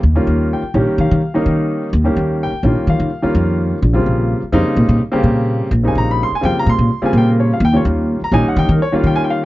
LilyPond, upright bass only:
\new Staff \with { instrumentName = "Upright bass" } { \clef bass \time 4/4 \key ees \mixolydian \tempo 4 = 127 ees,8 ees,8. r16 bes,,16 r16 ees16 ees16 r8 ees4 | ees,8 ees,8. r16 bes,,16 r16 ees16 ees16 r8 f,4 | bes,,8 bes,,8. r16 f,16 r16 bes,16 bes,16 r8 bes,4 | bes,,8 bes,,8. r16 f,16 r16 bes,16 bes,16 r8 bes,4 |
ees,8 ees,8. r16 bes,,16 r16 ees16 ees16 r8 ees4 | }